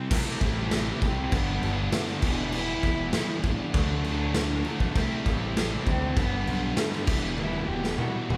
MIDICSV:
0, 0, Header, 1, 7, 480
1, 0, Start_track
1, 0, Tempo, 606673
1, 85, Time_signature, 4, 2, 24, 8
1, 6625, End_track
2, 0, Start_track
2, 0, Title_t, "Cello"
2, 0, Program_c, 0, 42
2, 0, Note_on_c, 0, 60, 105
2, 80, Note_off_c, 0, 60, 0
2, 96, Note_on_c, 0, 57, 102
2, 820, Note_on_c, 0, 60, 111
2, 832, Note_off_c, 0, 57, 0
2, 1057, Note_on_c, 0, 59, 110
2, 1069, Note_off_c, 0, 60, 0
2, 1530, Note_off_c, 0, 59, 0
2, 1763, Note_on_c, 0, 62, 104
2, 2003, Note_on_c, 0, 64, 126
2, 2015, Note_off_c, 0, 62, 0
2, 2483, Note_off_c, 0, 64, 0
2, 2492, Note_on_c, 0, 64, 98
2, 2669, Note_on_c, 0, 60, 69
2, 2681, Note_off_c, 0, 64, 0
2, 2737, Note_on_c, 0, 62, 104
2, 2749, Note_off_c, 0, 60, 0
2, 3209, Note_off_c, 0, 62, 0
2, 3919, Note_on_c, 0, 57, 123
2, 4368, Note_off_c, 0, 57, 0
2, 4639, Note_on_c, 0, 60, 116
2, 4876, Note_on_c, 0, 59, 124
2, 4888, Note_off_c, 0, 60, 0
2, 5359, Note_off_c, 0, 59, 0
2, 5602, Note_on_c, 0, 62, 96
2, 5790, Note_off_c, 0, 62, 0
2, 5790, Note_on_c, 0, 62, 78
2, 5839, Note_on_c, 0, 64, 117
2, 5851, Note_off_c, 0, 62, 0
2, 6066, Note_on_c, 0, 67, 116
2, 6078, Note_off_c, 0, 64, 0
2, 6309, Note_on_c, 0, 66, 107
2, 6321, Note_off_c, 0, 67, 0
2, 6536, Note_off_c, 0, 66, 0
2, 6541, Note_on_c, 0, 66, 108
2, 6625, Note_off_c, 0, 66, 0
2, 6625, End_track
3, 0, Start_track
3, 0, Title_t, "Distorted electric guitar"
3, 0, Program_c, 1, 30
3, 0, Note_on_c, 1, 48, 74
3, 80, Note_off_c, 1, 48, 0
3, 671, Note_on_c, 1, 64, 65
3, 677, Note_on_c, 1, 60, 69
3, 688, Note_on_c, 1, 55, 62
3, 786, Note_off_c, 1, 55, 0
3, 793, Note_off_c, 1, 60, 0
3, 794, Note_off_c, 1, 64, 0
3, 1158, Note_on_c, 1, 62, 82
3, 1163, Note_on_c, 1, 59, 74
3, 1167, Note_on_c, 1, 55, 59
3, 1268, Note_off_c, 1, 55, 0
3, 1271, Note_off_c, 1, 59, 0
3, 1277, Note_off_c, 1, 62, 0
3, 2603, Note_on_c, 1, 64, 68
3, 2610, Note_on_c, 1, 59, 61
3, 2617, Note_on_c, 1, 55, 61
3, 2714, Note_off_c, 1, 55, 0
3, 2717, Note_off_c, 1, 59, 0
3, 2717, Note_off_c, 1, 64, 0
3, 3073, Note_on_c, 1, 62, 87
3, 3082, Note_on_c, 1, 57, 73
3, 3087, Note_on_c, 1, 54, 69
3, 3183, Note_off_c, 1, 57, 0
3, 3184, Note_off_c, 1, 54, 0
3, 3190, Note_off_c, 1, 62, 0
3, 4509, Note_on_c, 1, 64, 78
3, 4518, Note_on_c, 1, 60, 69
3, 4526, Note_on_c, 1, 55, 62
3, 4630, Note_off_c, 1, 60, 0
3, 4630, Note_off_c, 1, 64, 0
3, 4634, Note_off_c, 1, 55, 0
3, 4998, Note_on_c, 1, 62, 82
3, 5007, Note_on_c, 1, 59, 71
3, 5015, Note_on_c, 1, 55, 68
3, 5119, Note_off_c, 1, 59, 0
3, 5123, Note_off_c, 1, 55, 0
3, 5128, Note_off_c, 1, 62, 0
3, 6448, Note_on_c, 1, 64, 77
3, 6458, Note_on_c, 1, 59, 66
3, 6462, Note_on_c, 1, 55, 64
3, 6568, Note_off_c, 1, 55, 0
3, 6569, Note_off_c, 1, 59, 0
3, 6575, Note_off_c, 1, 64, 0
3, 6625, End_track
4, 0, Start_track
4, 0, Title_t, "Distorted electric guitar"
4, 0, Program_c, 2, 30
4, 0, Note_on_c, 2, 64, 102
4, 80, Note_off_c, 2, 64, 0
4, 80, Note_on_c, 2, 48, 100
4, 89, Note_on_c, 2, 55, 105
4, 98, Note_on_c, 2, 60, 105
4, 103, Note_on_c, 2, 64, 106
4, 312, Note_off_c, 2, 48, 0
4, 321, Note_off_c, 2, 55, 0
4, 321, Note_on_c, 2, 48, 87
4, 329, Note_off_c, 2, 60, 0
4, 330, Note_on_c, 2, 55, 86
4, 333, Note_off_c, 2, 64, 0
4, 338, Note_on_c, 2, 60, 90
4, 343, Note_on_c, 2, 64, 90
4, 430, Note_off_c, 2, 64, 0
4, 439, Note_on_c, 2, 64, 75
4, 442, Note_off_c, 2, 60, 0
4, 450, Note_off_c, 2, 55, 0
4, 452, Note_on_c, 2, 60, 69
4, 460, Note_on_c, 2, 55, 61
4, 551, Note_off_c, 2, 48, 0
4, 560, Note_off_c, 2, 55, 0
4, 560, Note_on_c, 2, 48, 89
4, 566, Note_off_c, 2, 60, 0
4, 569, Note_on_c, 2, 55, 96
4, 575, Note_off_c, 2, 64, 0
4, 576, Note_on_c, 2, 60, 107
4, 584, Note_on_c, 2, 64, 102
4, 793, Note_off_c, 2, 48, 0
4, 802, Note_off_c, 2, 55, 0
4, 803, Note_on_c, 2, 48, 78
4, 808, Note_off_c, 2, 60, 0
4, 812, Note_on_c, 2, 55, 80
4, 818, Note_off_c, 2, 64, 0
4, 818, Note_on_c, 2, 60, 83
4, 827, Note_on_c, 2, 64, 77
4, 912, Note_off_c, 2, 64, 0
4, 921, Note_on_c, 2, 64, 73
4, 928, Note_off_c, 2, 60, 0
4, 938, Note_off_c, 2, 55, 0
4, 938, Note_on_c, 2, 60, 65
4, 947, Note_on_c, 2, 55, 68
4, 1028, Note_off_c, 2, 64, 0
4, 1029, Note_off_c, 2, 48, 0
4, 1036, Note_off_c, 2, 60, 0
4, 1039, Note_on_c, 2, 43, 107
4, 1041, Note_off_c, 2, 55, 0
4, 1048, Note_on_c, 2, 50, 100
4, 1053, Note_on_c, 2, 55, 106
4, 1058, Note_on_c, 2, 59, 105
4, 1065, Note_on_c, 2, 62, 115
4, 1271, Note_off_c, 2, 50, 0
4, 1279, Note_off_c, 2, 55, 0
4, 1281, Note_on_c, 2, 50, 92
4, 1288, Note_off_c, 2, 59, 0
4, 1289, Note_on_c, 2, 55, 91
4, 1293, Note_off_c, 2, 62, 0
4, 1298, Note_on_c, 2, 59, 93
4, 1302, Note_on_c, 2, 62, 93
4, 1394, Note_off_c, 2, 62, 0
4, 1404, Note_on_c, 2, 62, 77
4, 1407, Note_off_c, 2, 59, 0
4, 1417, Note_on_c, 2, 59, 75
4, 1418, Note_off_c, 2, 55, 0
4, 1428, Note_on_c, 2, 55, 66
4, 1512, Note_off_c, 2, 43, 0
4, 1520, Note_off_c, 2, 50, 0
4, 1522, Note_on_c, 2, 43, 97
4, 1525, Note_off_c, 2, 55, 0
4, 1530, Note_on_c, 2, 50, 105
4, 1531, Note_off_c, 2, 59, 0
4, 1534, Note_on_c, 2, 55, 108
4, 1536, Note_off_c, 2, 62, 0
4, 1541, Note_on_c, 2, 59, 118
4, 1545, Note_on_c, 2, 62, 107
4, 1638, Note_off_c, 2, 62, 0
4, 1647, Note_on_c, 2, 62, 76
4, 1651, Note_off_c, 2, 59, 0
4, 1659, Note_off_c, 2, 55, 0
4, 1660, Note_on_c, 2, 59, 67
4, 1668, Note_on_c, 2, 55, 63
4, 1748, Note_off_c, 2, 43, 0
4, 1751, Note_off_c, 2, 62, 0
4, 1752, Note_off_c, 2, 50, 0
4, 1757, Note_off_c, 2, 59, 0
4, 1762, Note_off_c, 2, 55, 0
4, 1768, Note_on_c, 2, 52, 93
4, 1775, Note_on_c, 2, 55, 95
4, 1782, Note_on_c, 2, 59, 104
4, 1791, Note_on_c, 2, 64, 119
4, 1880, Note_off_c, 2, 64, 0
4, 1890, Note_on_c, 2, 64, 72
4, 1893, Note_off_c, 2, 59, 0
4, 1899, Note_off_c, 2, 55, 0
4, 1902, Note_on_c, 2, 59, 70
4, 1909, Note_on_c, 2, 55, 72
4, 1991, Note_off_c, 2, 52, 0
4, 1999, Note_off_c, 2, 55, 0
4, 2001, Note_on_c, 2, 52, 101
4, 2007, Note_off_c, 2, 59, 0
4, 2008, Note_on_c, 2, 55, 95
4, 2013, Note_off_c, 2, 64, 0
4, 2017, Note_on_c, 2, 59, 101
4, 2022, Note_on_c, 2, 64, 110
4, 2230, Note_off_c, 2, 52, 0
4, 2238, Note_off_c, 2, 55, 0
4, 2240, Note_on_c, 2, 52, 92
4, 2245, Note_off_c, 2, 59, 0
4, 2247, Note_on_c, 2, 55, 76
4, 2251, Note_off_c, 2, 64, 0
4, 2255, Note_on_c, 2, 59, 92
4, 2261, Note_on_c, 2, 64, 97
4, 2349, Note_off_c, 2, 64, 0
4, 2359, Note_on_c, 2, 64, 80
4, 2364, Note_off_c, 2, 59, 0
4, 2374, Note_on_c, 2, 59, 71
4, 2376, Note_off_c, 2, 55, 0
4, 2385, Note_on_c, 2, 55, 64
4, 2474, Note_off_c, 2, 52, 0
4, 2483, Note_on_c, 2, 52, 94
4, 2484, Note_off_c, 2, 55, 0
4, 2490, Note_off_c, 2, 59, 0
4, 2493, Note_on_c, 2, 55, 111
4, 2496, Note_off_c, 2, 64, 0
4, 2500, Note_on_c, 2, 59, 101
4, 2506, Note_on_c, 2, 64, 105
4, 2709, Note_off_c, 2, 52, 0
4, 2718, Note_off_c, 2, 55, 0
4, 2719, Note_on_c, 2, 52, 79
4, 2728, Note_off_c, 2, 59, 0
4, 2728, Note_on_c, 2, 55, 72
4, 2733, Note_off_c, 2, 64, 0
4, 2737, Note_on_c, 2, 59, 83
4, 2743, Note_on_c, 2, 64, 96
4, 2828, Note_off_c, 2, 64, 0
4, 2838, Note_on_c, 2, 64, 74
4, 2842, Note_off_c, 2, 59, 0
4, 2851, Note_on_c, 2, 59, 72
4, 2854, Note_off_c, 2, 55, 0
4, 2863, Note_on_c, 2, 55, 67
4, 2946, Note_off_c, 2, 52, 0
4, 2946, Note_off_c, 2, 64, 0
4, 2952, Note_off_c, 2, 59, 0
4, 2954, Note_on_c, 2, 50, 99
4, 2958, Note_off_c, 2, 55, 0
4, 2964, Note_on_c, 2, 54, 116
4, 2968, Note_on_c, 2, 57, 101
4, 2977, Note_on_c, 2, 62, 105
4, 3188, Note_off_c, 2, 50, 0
4, 3197, Note_off_c, 2, 54, 0
4, 3197, Note_on_c, 2, 50, 88
4, 3204, Note_off_c, 2, 57, 0
4, 3207, Note_off_c, 2, 62, 0
4, 3207, Note_on_c, 2, 54, 82
4, 3213, Note_on_c, 2, 57, 93
4, 3216, Note_on_c, 2, 62, 96
4, 3311, Note_off_c, 2, 62, 0
4, 3321, Note_on_c, 2, 62, 74
4, 3327, Note_off_c, 2, 57, 0
4, 3337, Note_off_c, 2, 54, 0
4, 3337, Note_on_c, 2, 57, 76
4, 3346, Note_on_c, 2, 54, 72
4, 3422, Note_off_c, 2, 50, 0
4, 3432, Note_on_c, 2, 50, 99
4, 3435, Note_off_c, 2, 54, 0
4, 3441, Note_off_c, 2, 57, 0
4, 3445, Note_on_c, 2, 54, 108
4, 3449, Note_off_c, 2, 62, 0
4, 3450, Note_on_c, 2, 57, 102
4, 3458, Note_on_c, 2, 62, 109
4, 3547, Note_off_c, 2, 62, 0
4, 3556, Note_on_c, 2, 62, 76
4, 3561, Note_off_c, 2, 57, 0
4, 3570, Note_off_c, 2, 54, 0
4, 3570, Note_on_c, 2, 57, 68
4, 3579, Note_on_c, 2, 54, 64
4, 3668, Note_off_c, 2, 50, 0
4, 3676, Note_off_c, 2, 54, 0
4, 3677, Note_on_c, 2, 50, 79
4, 3684, Note_off_c, 2, 57, 0
4, 3685, Note_on_c, 2, 54, 85
4, 3693, Note_on_c, 2, 57, 87
4, 3694, Note_off_c, 2, 62, 0
4, 3703, Note_on_c, 2, 62, 91
4, 3785, Note_off_c, 2, 62, 0
4, 3794, Note_on_c, 2, 62, 80
4, 3797, Note_off_c, 2, 57, 0
4, 3807, Note_on_c, 2, 57, 74
4, 3810, Note_off_c, 2, 54, 0
4, 3820, Note_on_c, 2, 54, 67
4, 3903, Note_off_c, 2, 62, 0
4, 3905, Note_off_c, 2, 50, 0
4, 3910, Note_off_c, 2, 57, 0
4, 3913, Note_on_c, 2, 48, 96
4, 3916, Note_off_c, 2, 54, 0
4, 3924, Note_on_c, 2, 55, 104
4, 3932, Note_on_c, 2, 60, 107
4, 3939, Note_on_c, 2, 64, 111
4, 4145, Note_off_c, 2, 48, 0
4, 4155, Note_on_c, 2, 48, 77
4, 4160, Note_off_c, 2, 60, 0
4, 4163, Note_off_c, 2, 55, 0
4, 4166, Note_on_c, 2, 55, 88
4, 4169, Note_on_c, 2, 60, 92
4, 4170, Note_off_c, 2, 64, 0
4, 4179, Note_on_c, 2, 64, 93
4, 4265, Note_off_c, 2, 64, 0
4, 4275, Note_on_c, 2, 64, 77
4, 4281, Note_off_c, 2, 60, 0
4, 4290, Note_on_c, 2, 60, 78
4, 4297, Note_off_c, 2, 55, 0
4, 4300, Note_on_c, 2, 55, 66
4, 4390, Note_off_c, 2, 48, 0
4, 4399, Note_on_c, 2, 48, 97
4, 4406, Note_off_c, 2, 55, 0
4, 4407, Note_off_c, 2, 60, 0
4, 4409, Note_on_c, 2, 55, 97
4, 4414, Note_off_c, 2, 64, 0
4, 4416, Note_on_c, 2, 60, 106
4, 4424, Note_on_c, 2, 64, 108
4, 4629, Note_off_c, 2, 48, 0
4, 4638, Note_on_c, 2, 48, 70
4, 4645, Note_off_c, 2, 60, 0
4, 4647, Note_off_c, 2, 55, 0
4, 4650, Note_on_c, 2, 55, 78
4, 4652, Note_off_c, 2, 64, 0
4, 4655, Note_on_c, 2, 60, 84
4, 4662, Note_on_c, 2, 64, 83
4, 4750, Note_off_c, 2, 64, 0
4, 4760, Note_on_c, 2, 64, 74
4, 4763, Note_off_c, 2, 60, 0
4, 4772, Note_on_c, 2, 60, 68
4, 4779, Note_off_c, 2, 55, 0
4, 4783, Note_on_c, 2, 55, 71
4, 4865, Note_off_c, 2, 48, 0
4, 4866, Note_off_c, 2, 64, 0
4, 4872, Note_off_c, 2, 60, 0
4, 4881, Note_on_c, 2, 43, 100
4, 4890, Note_off_c, 2, 55, 0
4, 4890, Note_on_c, 2, 50, 103
4, 4893, Note_on_c, 2, 55, 108
4, 4898, Note_on_c, 2, 59, 112
4, 4907, Note_on_c, 2, 62, 120
4, 5115, Note_off_c, 2, 50, 0
4, 5125, Note_on_c, 2, 50, 89
4, 5129, Note_off_c, 2, 55, 0
4, 5131, Note_off_c, 2, 59, 0
4, 5132, Note_on_c, 2, 55, 95
4, 5138, Note_off_c, 2, 62, 0
4, 5140, Note_on_c, 2, 59, 88
4, 5147, Note_on_c, 2, 62, 103
4, 5227, Note_off_c, 2, 62, 0
4, 5236, Note_on_c, 2, 62, 73
4, 5238, Note_off_c, 2, 59, 0
4, 5247, Note_on_c, 2, 59, 75
4, 5255, Note_off_c, 2, 55, 0
4, 5259, Note_on_c, 2, 55, 69
4, 5344, Note_off_c, 2, 43, 0
4, 5351, Note_off_c, 2, 50, 0
4, 5353, Note_on_c, 2, 43, 109
4, 5360, Note_on_c, 2, 50, 98
4, 5362, Note_off_c, 2, 55, 0
4, 5364, Note_off_c, 2, 59, 0
4, 5365, Note_on_c, 2, 55, 104
4, 5367, Note_off_c, 2, 62, 0
4, 5373, Note_on_c, 2, 59, 105
4, 5376, Note_on_c, 2, 62, 102
4, 5470, Note_off_c, 2, 62, 0
4, 5480, Note_on_c, 2, 62, 75
4, 5482, Note_off_c, 2, 59, 0
4, 5491, Note_on_c, 2, 59, 63
4, 5498, Note_off_c, 2, 55, 0
4, 5501, Note_on_c, 2, 55, 65
4, 5583, Note_off_c, 2, 43, 0
4, 5586, Note_off_c, 2, 62, 0
4, 5587, Note_off_c, 2, 50, 0
4, 5592, Note_off_c, 2, 59, 0
4, 5596, Note_on_c, 2, 52, 104
4, 5604, Note_off_c, 2, 55, 0
4, 5607, Note_on_c, 2, 55, 94
4, 5615, Note_on_c, 2, 59, 105
4, 5622, Note_on_c, 2, 64, 108
4, 5715, Note_off_c, 2, 64, 0
4, 5724, Note_off_c, 2, 59, 0
4, 5725, Note_on_c, 2, 64, 89
4, 5733, Note_on_c, 2, 59, 73
4, 5738, Note_off_c, 2, 55, 0
4, 5748, Note_on_c, 2, 55, 66
4, 5833, Note_off_c, 2, 52, 0
4, 5841, Note_off_c, 2, 55, 0
4, 5842, Note_on_c, 2, 52, 91
4, 5850, Note_off_c, 2, 59, 0
4, 5851, Note_on_c, 2, 55, 108
4, 5856, Note_off_c, 2, 64, 0
4, 5860, Note_on_c, 2, 59, 105
4, 5865, Note_on_c, 2, 64, 101
4, 6068, Note_off_c, 2, 52, 0
4, 6078, Note_off_c, 2, 55, 0
4, 6078, Note_on_c, 2, 52, 80
4, 6087, Note_off_c, 2, 59, 0
4, 6088, Note_on_c, 2, 55, 84
4, 6093, Note_off_c, 2, 64, 0
4, 6097, Note_on_c, 2, 59, 94
4, 6102, Note_on_c, 2, 64, 91
4, 6189, Note_off_c, 2, 64, 0
4, 6199, Note_on_c, 2, 64, 75
4, 6202, Note_off_c, 2, 59, 0
4, 6211, Note_on_c, 2, 59, 71
4, 6215, Note_off_c, 2, 55, 0
4, 6224, Note_on_c, 2, 55, 67
4, 6310, Note_off_c, 2, 52, 0
4, 6319, Note_off_c, 2, 55, 0
4, 6320, Note_on_c, 2, 52, 88
4, 6325, Note_off_c, 2, 59, 0
4, 6328, Note_on_c, 2, 55, 93
4, 6334, Note_off_c, 2, 64, 0
4, 6334, Note_on_c, 2, 59, 101
4, 6344, Note_on_c, 2, 64, 96
4, 6548, Note_off_c, 2, 52, 0
4, 6557, Note_off_c, 2, 55, 0
4, 6557, Note_on_c, 2, 52, 75
4, 6567, Note_off_c, 2, 59, 0
4, 6567, Note_on_c, 2, 55, 74
4, 6570, Note_off_c, 2, 64, 0
4, 6577, Note_on_c, 2, 59, 80
4, 6580, Note_on_c, 2, 64, 83
4, 6625, Note_off_c, 2, 52, 0
4, 6625, Note_off_c, 2, 55, 0
4, 6625, Note_off_c, 2, 59, 0
4, 6625, Note_off_c, 2, 64, 0
4, 6625, End_track
5, 0, Start_track
5, 0, Title_t, "Fingered electric bass"
5, 0, Program_c, 3, 33
5, 88, Note_on_c, 3, 36, 99
5, 185, Note_off_c, 3, 36, 0
5, 325, Note_on_c, 3, 33, 92
5, 719, Note_off_c, 3, 33, 0
5, 808, Note_on_c, 3, 36, 92
5, 1003, Note_off_c, 3, 36, 0
5, 1044, Note_on_c, 3, 31, 112
5, 1241, Note_off_c, 3, 31, 0
5, 1283, Note_on_c, 3, 31, 97
5, 1480, Note_off_c, 3, 31, 0
5, 1759, Note_on_c, 3, 28, 96
5, 2154, Note_off_c, 3, 28, 0
5, 2243, Note_on_c, 3, 28, 90
5, 2440, Note_off_c, 3, 28, 0
5, 2722, Note_on_c, 3, 33, 92
5, 2820, Note_off_c, 3, 33, 0
5, 2958, Note_on_c, 3, 38, 95
5, 3649, Note_off_c, 3, 38, 0
5, 3798, Note_on_c, 3, 35, 90
5, 3898, Note_off_c, 3, 35, 0
5, 3919, Note_on_c, 3, 36, 99
5, 4019, Note_off_c, 3, 36, 0
5, 4161, Note_on_c, 3, 33, 100
5, 4555, Note_off_c, 3, 33, 0
5, 4637, Note_on_c, 3, 38, 99
5, 4836, Note_off_c, 3, 38, 0
5, 4878, Note_on_c, 3, 31, 119
5, 5076, Note_off_c, 3, 31, 0
5, 5121, Note_on_c, 3, 35, 102
5, 5318, Note_off_c, 3, 35, 0
5, 5597, Note_on_c, 3, 28, 94
5, 5993, Note_off_c, 3, 28, 0
5, 6075, Note_on_c, 3, 28, 89
5, 6275, Note_off_c, 3, 28, 0
5, 6566, Note_on_c, 3, 28, 95
5, 6625, Note_off_c, 3, 28, 0
5, 6625, End_track
6, 0, Start_track
6, 0, Title_t, "Muted distorted electric guitar strokes"
6, 795, Note_on_c, 9, 29, 50
6, 875, Note_off_c, 9, 29, 0
6, 2720, Note_on_c, 9, 29, 52
6, 2799, Note_off_c, 9, 29, 0
6, 4633, Note_on_c, 9, 29, 52
6, 4712, Note_off_c, 9, 29, 0
6, 6576, Note_on_c, 9, 29, 47
6, 6625, Note_off_c, 9, 29, 0
6, 6625, End_track
7, 0, Start_track
7, 0, Title_t, "Drums"
7, 86, Note_on_c, 9, 36, 126
7, 87, Note_on_c, 9, 49, 127
7, 87, Note_on_c, 9, 57, 89
7, 165, Note_off_c, 9, 36, 0
7, 166, Note_off_c, 9, 49, 0
7, 166, Note_off_c, 9, 57, 0
7, 324, Note_on_c, 9, 57, 69
7, 326, Note_on_c, 9, 36, 86
7, 403, Note_off_c, 9, 57, 0
7, 405, Note_off_c, 9, 36, 0
7, 564, Note_on_c, 9, 57, 99
7, 565, Note_on_c, 9, 38, 116
7, 643, Note_off_c, 9, 57, 0
7, 644, Note_off_c, 9, 38, 0
7, 806, Note_on_c, 9, 36, 96
7, 806, Note_on_c, 9, 57, 69
7, 885, Note_off_c, 9, 36, 0
7, 885, Note_off_c, 9, 57, 0
7, 1044, Note_on_c, 9, 57, 98
7, 1045, Note_on_c, 9, 36, 119
7, 1123, Note_off_c, 9, 57, 0
7, 1125, Note_off_c, 9, 36, 0
7, 1287, Note_on_c, 9, 57, 68
7, 1366, Note_off_c, 9, 57, 0
7, 1522, Note_on_c, 9, 57, 99
7, 1523, Note_on_c, 9, 38, 125
7, 1601, Note_off_c, 9, 57, 0
7, 1602, Note_off_c, 9, 38, 0
7, 1640, Note_on_c, 9, 38, 31
7, 1719, Note_off_c, 9, 38, 0
7, 1757, Note_on_c, 9, 57, 109
7, 1761, Note_on_c, 9, 36, 104
7, 1836, Note_off_c, 9, 57, 0
7, 1840, Note_off_c, 9, 36, 0
7, 1997, Note_on_c, 9, 57, 102
7, 2076, Note_off_c, 9, 57, 0
7, 2238, Note_on_c, 9, 57, 69
7, 2241, Note_on_c, 9, 36, 90
7, 2317, Note_off_c, 9, 57, 0
7, 2320, Note_off_c, 9, 36, 0
7, 2475, Note_on_c, 9, 57, 105
7, 2476, Note_on_c, 9, 38, 124
7, 2554, Note_off_c, 9, 57, 0
7, 2555, Note_off_c, 9, 38, 0
7, 2717, Note_on_c, 9, 57, 71
7, 2720, Note_on_c, 9, 36, 93
7, 2796, Note_off_c, 9, 57, 0
7, 2799, Note_off_c, 9, 36, 0
7, 2958, Note_on_c, 9, 57, 92
7, 2961, Note_on_c, 9, 36, 120
7, 3037, Note_off_c, 9, 57, 0
7, 3040, Note_off_c, 9, 36, 0
7, 3200, Note_on_c, 9, 57, 64
7, 3279, Note_off_c, 9, 57, 0
7, 3437, Note_on_c, 9, 57, 96
7, 3438, Note_on_c, 9, 38, 117
7, 3516, Note_off_c, 9, 57, 0
7, 3517, Note_off_c, 9, 38, 0
7, 3676, Note_on_c, 9, 57, 64
7, 3755, Note_off_c, 9, 57, 0
7, 3800, Note_on_c, 9, 36, 93
7, 3879, Note_off_c, 9, 36, 0
7, 3920, Note_on_c, 9, 57, 94
7, 3921, Note_on_c, 9, 36, 113
7, 3999, Note_off_c, 9, 57, 0
7, 4000, Note_off_c, 9, 36, 0
7, 4161, Note_on_c, 9, 36, 93
7, 4161, Note_on_c, 9, 57, 67
7, 4240, Note_off_c, 9, 36, 0
7, 4241, Note_off_c, 9, 57, 0
7, 4406, Note_on_c, 9, 57, 96
7, 4407, Note_on_c, 9, 38, 122
7, 4485, Note_off_c, 9, 57, 0
7, 4486, Note_off_c, 9, 38, 0
7, 4641, Note_on_c, 9, 36, 98
7, 4643, Note_on_c, 9, 57, 67
7, 4720, Note_off_c, 9, 36, 0
7, 4722, Note_off_c, 9, 57, 0
7, 4879, Note_on_c, 9, 36, 118
7, 4881, Note_on_c, 9, 57, 91
7, 4958, Note_off_c, 9, 36, 0
7, 4960, Note_off_c, 9, 57, 0
7, 5121, Note_on_c, 9, 57, 66
7, 5200, Note_off_c, 9, 57, 0
7, 5355, Note_on_c, 9, 57, 90
7, 5356, Note_on_c, 9, 38, 127
7, 5434, Note_off_c, 9, 57, 0
7, 5435, Note_off_c, 9, 38, 0
7, 5479, Note_on_c, 9, 38, 34
7, 5558, Note_off_c, 9, 38, 0
7, 5594, Note_on_c, 9, 57, 112
7, 5598, Note_on_c, 9, 36, 108
7, 5674, Note_off_c, 9, 57, 0
7, 5677, Note_off_c, 9, 36, 0
7, 5838, Note_on_c, 9, 48, 75
7, 5917, Note_off_c, 9, 48, 0
7, 5960, Note_on_c, 9, 48, 63
7, 6039, Note_off_c, 9, 48, 0
7, 6202, Note_on_c, 9, 38, 65
7, 6281, Note_off_c, 9, 38, 0
7, 6316, Note_on_c, 9, 47, 83
7, 6395, Note_off_c, 9, 47, 0
7, 6569, Note_on_c, 9, 47, 88
7, 6625, Note_off_c, 9, 47, 0
7, 6625, End_track
0, 0, End_of_file